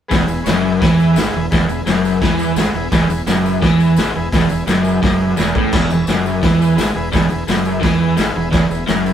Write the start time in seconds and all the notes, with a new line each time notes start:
0.08 E1 E2 G#4 B4 E5, kick, open hi-hat, tambourine
0.13 snare
0.26 E1 E2 G#4 B4 E5, tambourine
0.41 G#4 B4 C#5
0.46 F#1 F#2, snare, open hi-hat, tambourine
0.59 G#4 B4 E5
0.79 E2 E3 G#4 B4 E5, kick, open hi-hat
0.83 snare
0.96 G#4 B4 E5, tambourine
1.12 G#1 G#4 B4 E5, tambourine
1.16 G#2, snare, open hi-hat
1.30 E1 G#4 B4 E5, tambourine
1.37 E2
1.51 E1 E2 G#4 B4 E5, kick, snare, open hi-hat, tambourine
1.66 E1 E2 G#4 B4 E5, tambourine
1.85 F#1 F#2 G#4 B4 E5, snare, open hi-hat, tambourine
2.05 G#4 B4 E5, tambourine
2.21 E2 E3 G#4 B4 E5, kick, snare, open hi-hat
2.38 G#4 B4 E5, tambourine
2.56 G#1 G#2 G#4 B4 E5, snare, open hi-hat, tambourine
2.74 E1 E2 G#4 B4 E5, tambourine
2.92 E1 E2 G#4 B4 E5, kick, snare, open hi-hat, tambourine
3.06 E1 E2 G#4 B4 E5, tambourine
3.26 F#1 F#2 G#4 B4 E5, snare, open hi-hat, tambourine
3.44 G#4 B4 E5, tambourine
3.62 E2 E3 G#4 B4 E5, kick, snare, open hi-hat
3.79 G#4 B4 E5, tambourine
3.96 G#1 G#2 G#4 B4 E5, snare, open hi-hat, tambourine
4.15 E1 E2 G#4 B4 E5, tambourine
4.32 E1 E2 G#4 B4 E5, kick, snare, open hi-hat, tambourine
4.49 E1 E2 G#4 B4 E5, tambourine
4.67 F#1 F#2 G#4 B4 E5, snare, open hi-hat, tambourine
4.84 G#4 B4 E5, tambourine
5.02 F#1 F#2 G#4 B4 E5, kick, snare, open hi-hat
5.18 G#4 B4 E5
5.37 E1 E2 G#4 B4 E5, snare, open hi-hat, tambourine
5.55 A1 A2 G#4 B4, kick, tambourine
5.60 E5
5.72 E1 E2 G#4 B4 E5, kick, snare, crash, tambourine
5.90 E1 E2 G#4 B4, tambourine
5.95 E5
6.07 F#1 F#2 G#4 B4 E5, snare, open hi-hat, tambourine
6.25 G#4 B4 E5, tambourine
6.43 E2 E3 G#4 B4 E5, kick, snare, open hi-hat
6.59 G#4 B4 E5, tambourine
6.76 G#1 G#2 G#4 B4 E5, snare, open hi-hat, tambourine
6.95 E1 E2 G#4 B4 E5, tambourine
7.12 E1 E2 G#4 B4 E5, kick, snare, open hi-hat, tambourine
7.30 E1 E2 G#4 B4 E5, tambourine
7.47 F#1 F#2 G#4 B4 E5, snare, open hi-hat, tambourine
7.65 G#4 B4 E5, tambourine
7.81 E2 E3 G#4 B4, kick, snare, open hi-hat
7.85 E5
8.01 G#4 B4 E5
8.17 G#1 G#2 G#4 B4 E5, snare, open hi-hat, tambourine
8.35 E1 E2 G#4 B4 E5
8.51 E1 E2 G#4 B4 E5, kick, snare, open hi-hat, tambourine
8.68 E1 E2 G#4 B4 E5, tambourine
8.87 F#1 F#2 G#4 B4 E5, snare, open hi-hat, tambourine
9.06 G#4 B4 E5, tambourine